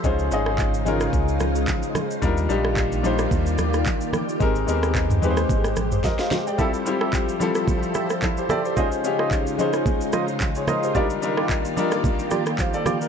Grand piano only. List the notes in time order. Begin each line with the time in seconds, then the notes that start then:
0.04 G#3 C#4 D#4 F4 C5
0.31 G#3 C#4 D#4 F4 D#5
0.85 G#3 C#4 D#4 F4 A#4
2.22 G3 D4 D#4 F4 A#4
2.49 G3 D4 D#4 F4 G4
3.03 G3 D4 D#4 F4 C5
4.40 G#3 C4 D#4 G4 A#4
4.67 G#3 B3 D#4 G4 A#4
4.74 C4
5.22 G#3 C4 D#4 G4 B4
5.31 C5
5.92 G4 C5
6.04 A#4 D#5
6.20 C5 F5
6.47 D5 G5
6.58 G3 C4 E4 F4 A4
6.85 G3 C4 E4 F4 G4
7.40 G3 C4 E4 F4 A4
8.23 E4 A4
8.38 G4 C5
8.50 A4 D5
8.65 G4 C5
8.76 G#3 C#4 D#4 F4 C5
9.04 G#3 C#4 D#4 F4 G4
9.58 G#3 C#4 D#4 F4 C5
10.56 G#4 C#5
10.68 A#4 D#5
10.84 G4 C5
10.94 G3 D4 D#4 F4 A#4
11.22 G3 D4 D#4 F4 A#4
11.76 G3 D4 D#4 F4 A#4
12.59 C5 F5
12.74 A4 D5
13.02 F4 A#4